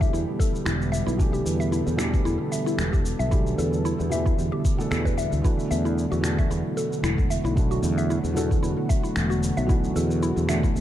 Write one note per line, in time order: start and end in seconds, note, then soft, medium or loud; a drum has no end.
0.00 1.18 B2 medium
0.00 10.81 D3 medium
0.00 1.19 E3 medium
0.00 5.40 G3 medium
0.00 1.19 A3 medium
0.00 5.40 B3 medium
0.00 1.20 D4 medium
0.00 5.40 E4 medium
0.00 1.15 G4 medium
0.00 1.21 G4 medium
0.00 0.12 E5 medium
0.00 kick loud
0.00 cabasa soft
0.13 0.23 E2 medium
0.13 0.39 E4 medium
0.13 cabasa soft
0.39 0.65 A4 medium
0.39 kick loud
0.39 cabasa medium
0.55 cabasa soft
0.65 1.00 E1 medium
0.65 0.91 E4 loud
0.65 finger snap medium
0.65 cabasa soft
0.82 cabasa soft
0.92 1.05 E5 medium
0.92 cabasa medium
1.07 1.40 B1 medium
1.07 1.18 E4 medium
1.07 cabasa soft
1.18 1.95 B2 medium
1.18 1.96 E3 medium
1.18 1.96 A3 medium
1.18 1.96 D4 medium
1.18 1.97 G4 loud
1.18 5.40 A4 medium
1.18 kick loud
1.18 cabasa soft
1.33 1.45 G4 medium
1.33 cabasa soft
1.46 1.80 E2 medium
1.46 cabasa medium
1.60 1.72 E5 medium
1.60 cabasa soft
1.72 1.98 E4 medium
1.72 cabasa soft
1.87 2.20 E2 medium
1.87 cabasa soft
1.96 3.28 B2 medium
1.96 3.28 E3 medium
1.96 3.29 A3 medium
1.96 3.29 D4 medium
1.96 2.24 A4 medium
1.96 finger snap medium
1.96 cabasa medium
2.01 3.30 G4 medium
2.14 kick medium
2.14 cabasa soft
2.25 2.36 E2 medium
2.25 2.51 E4 loud
2.25 cabasa soft
2.52 2.65 E5 medium
2.52 cabasa medium
2.66 2.78 E4 medium
2.66 cabasa soft
2.78 3.13 E1 medium
2.78 finger snap medium
2.78 cabasa soft
2.93 3.04 G4 medium
2.93 kick loud
2.93 cabasa soft
3.06 cabasa medium
3.19 3.52 B1 medium
3.19 3.31 E5 medium
3.19 cabasa soft
3.31 3.42 B2 medium
3.31 3.43 E3 medium
3.31 3.43 A3 medium
3.31 3.43 D4 medium
3.31 3.57 E4 medium
3.31 3.43 G4 medium
3.31 kick loud
3.31 cabasa soft
3.47 cabasa soft
3.58 3.92 E2 loud
3.58 3.84 A4 medium
3.58 cabasa medium
3.73 cabasa soft
3.85 4.10 E4 medium
3.85 cabasa soft
4.00 4.32 E2 medium
4.00 cabasa soft
4.09 4.75 B2 medium
4.09 4.76 E3 medium
4.09 4.76 A3 medium
4.09 4.77 D4 medium
4.09 4.24 E5 medium
4.09 cabasa medium
4.14 4.77 G4 medium
4.26 4.37 E4 medium
4.26 kick loud
4.26 cabasa soft
4.38 4.48 E2 medium
4.38 cabasa soft
4.52 4.64 G4 medium
4.65 kick loud
4.65 cabasa medium
4.77 5.40 B2 medium
4.77 5.41 E3 medium
4.77 5.41 A3 medium
4.77 4.90 B3 medium
4.77 5.42 D4 medium
4.77 5.42 A4 medium
4.77 cabasa soft
4.91 5.25 E2 medium
4.91 5.05 A4 medium
4.91 finger snap medium
4.91 cabasa soft
5.05 5.12 B4 medium
5.05 kick medium
5.05 cabasa soft
5.18 5.31 E5 medium
5.18 cabasa medium
5.32 5.41 D2 medium
5.32 cabasa soft
5.42 6.19 B2 medium
5.42 6.20 E3 medium
5.42 10.81 F#3 medium
5.42 10.81 A3 medium
5.42 6.21 A3 medium
5.42 10.81 B3 medium
5.42 6.21 D4 medium
5.42 5.70 E4 loud
5.42 10.81 F#4 medium
5.42 kick loud
5.42 cabasa soft
5.46 6.22 F#4 medium
5.59 cabasa soft
5.71 6.05 E2 medium
5.71 5.84 E5 medium
5.71 cabasa medium
5.85 5.97 E4 medium
5.85 cabasa soft
5.98 cabasa soft
6.12 6.45 E2 medium
6.12 6.23 F#4 medium
6.12 cabasa soft
6.21 7.52 B2 medium
6.21 7.53 E3 medium
6.21 7.53 A3 medium
6.21 7.54 D4 medium
6.21 7.54 F#4 medium
6.21 finger snap medium
6.21 cabasa medium
6.38 6.50 E5 medium
6.38 kick medium
6.38 cabasa soft
6.50 6.60 E2 medium
6.50 6.76 E4 medium
6.50 cabasa soft
6.77 7.02 A4 medium
6.77 cabasa medium
6.92 cabasa soft
7.03 7.37 E1 medium
7.03 7.29 E4 loud
7.03 finger snap medium
7.03 cabasa soft
7.18 kick medium
7.18 cabasa soft
7.30 7.43 E5 medium
7.30 cabasa medium
7.44 7.77 B1 loud
7.44 7.56 E4 medium
7.44 cabasa soft
7.55 7.67 B2 medium
7.55 7.67 E3 medium
7.55 7.68 A3 medium
7.55 7.68 D4 medium
7.55 7.68 F#4 medium
7.55 kick loud
7.55 cabasa soft
7.71 7.82 F#4 medium
7.71 cabasa soft
7.83 8.17 E2 loud
7.83 cabasa medium
7.98 8.09 E5 medium
7.98 cabasa soft
8.10 8.35 E4 medium
8.10 cabasa soft
8.24 8.57 E2 medium
8.24 cabasa soft
8.34 9.65 B2 medium
8.34 9.65 E3 medium
8.34 9.66 A3 medium
8.34 9.66 D4 medium
8.34 9.67 F#4 medium
8.34 8.62 A4 medium
8.34 cabasa medium
8.51 kick medium
8.51 cabasa soft
8.63 8.73 E2 medium
8.63 8.88 E4 loud
8.63 cabasa soft
8.89 9.02 E5 medium
8.89 kick medium
8.89 cabasa medium
9.03 9.15 E4 medium
9.03 cabasa soft
9.16 9.50 E1 medium
9.16 finger snap medium
9.16 cabasa soft
9.30 9.42 F#4 medium
9.30 cabasa soft
9.43 cabasa medium
9.57 9.90 B1 loud
9.57 9.68 E5 medium
9.57 cabasa soft
9.66 10.44 B2 medium
9.66 10.45 E3 medium
9.66 10.46 A3 medium
9.66 10.46 D4 medium
9.66 9.94 E4 medium
9.66 kick loud
9.66 cabasa soft
9.71 10.47 F#4 loud
9.84 cabasa soft
9.96 10.30 E2 loud
9.96 10.21 A4 medium
9.96 cabasa medium
10.11 cabasa soft
10.23 10.48 E4 loud
10.23 cabasa soft
10.36 10.69 E2 medium
10.36 cabasa soft
10.47 10.81 B2 medium
10.47 10.81 E3 medium
10.47 10.81 A3 medium
10.47 10.81 D4 medium
10.47 10.62 E5 medium
10.47 finger snap medium
10.47 cabasa medium
10.51 10.81 F#4 medium
10.63 10.75 E4 medium
10.63 kick medium
10.63 cabasa soft
10.75 10.81 E2 medium
10.75 cabasa soft